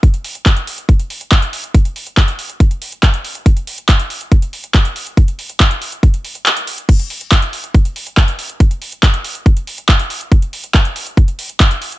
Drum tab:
CC |----------------|----------------|----------------|----------------|
HH |xxoxxxoxxxoxxxox|xxoxxxoxxxoxxxox|xxoxxxoxxxoxxxox|xxoxxxoxxxoxxxox|
CP |----x-------x---|----x-------x---|----x-------x---|----x-------x---|
BD |o---o---o---o---|o---o---o---o---|o---o---o---o---|o---o---o-------|

CC |x---------------|----------------|----------------|
HH |xxoxxxoxxxoxxxox|xxoxxxoxxxoxxxox|xxoxxxoxxxoxxxox|
CP |----x-------x---|----x-------x---|----x-------x---|
BD |o---o---o---o---|o---o---o---o---|o---o---o---o---|